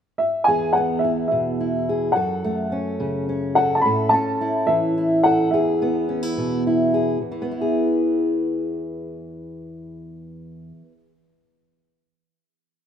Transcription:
0.18 0.48 E5 medium
0.44 2.15 E2 soft
0.44 0.75 G#5 medium
0.48 1.88 G#4 soft
0.73 1.00 F#5 medium
0.77 2.13 B3 soft
0.99 1.26 E5 medium
1.04 1.59 E4 soft
1.28 2.16 B2 soft
1.28 2.10 E5 medium
1.60 2.13 E4 soft
1.89 2.13 G#4 soft
2.12 3.81 F#2 medium
2.12 3.55 A4 soft
2.12 2.73 F#5 medium
2.44 4.13 A3 soft
2.72 3.28 C#4 soft
3.00 3.81 C#3 medium
3.29 4.12 C#4 soft
3.55 3.81 A4 soft
3.55 3.75 F#5 medium
3.75 3.83 A5 medium
3.81 5.50 A2 medium
3.81 4.12 B5 medium
3.86 5.24 A4 medium
4.09 4.69 A5 medium
4.13 5.50 C#4 soft
4.41 4.97 E4 soft
4.67 6.37 E3 soft
4.67 5.25 E5 medium
4.98 6.08 E4 soft
5.24 5.50 A4 medium
5.24 5.53 F#5 medium
5.51 7.20 E2 medium
5.51 6.93 G#4 medium
5.51 6.60 E5 medium
5.82 7.18 B3 medium
6.09 6.23 C#4 soft
6.23 6.65 E4 soft
6.37 7.21 B2 soft
6.67 7.18 E4 soft
6.94 7.18 G#4 soft
7.21 10.71 E2 soft
7.32 10.82 E3 soft
7.42 10.92 B3 soft
7.51 11.01 E4 soft
7.61 11.11 G#4 soft

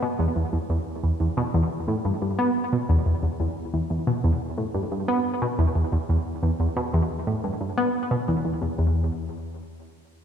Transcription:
0.02 0.07 B2 medium
0.19 0.27 E2 medium
0.36 0.44 E2 medium
0.53 0.58 E2 medium
0.70 0.78 E2 medium
1.03 1.11 E2 medium
1.20 1.28 E2 medium
1.37 1.42 B2 medium
1.54 1.62 E2 medium
1.88 1.96 A2 medium
2.05 2.13 G2 medium
2.22 2.33 G2 medium
2.39 2.50 B3 medium
2.73 2.77 B2 loud
2.89 2.97 E2 medium
3.06 3.14 E2 medium
3.23 3.28 E2 medium
3.40 3.48 E2 medium
3.74 3.81 E2 medium
3.90 3.98 E2 medium
4.07 4.12 B2 medium
4.24 4.32 E2 medium
4.58 4.65 A2 medium
4.74 4.82 G2 medium
4.91 5.03 G2 medium
5.08 5.20 B3 medium
5.42 5.47 B2 medium
5.59 5.66 E2 medium
5.75 5.83 E2 medium
5.92 5.97 E2 medium
6.09 6.17 E2 medium
6.43 6.51 E2 medium
6.60 6.68 E2 medium
6.77 6.81 B2 medium
6.93 7.01 E2 medium
7.27 7.35 A2 medium
7.44 7.52 G2 medium
7.61 7.72 G2 medium
7.77 7.89 B3 medium
8.11 8.16 B2 medium
8.28 8.36 E2 medium
8.45 8.53 E2 medium
8.62 8.67 E2 medium
8.79 9.10 E2 medium

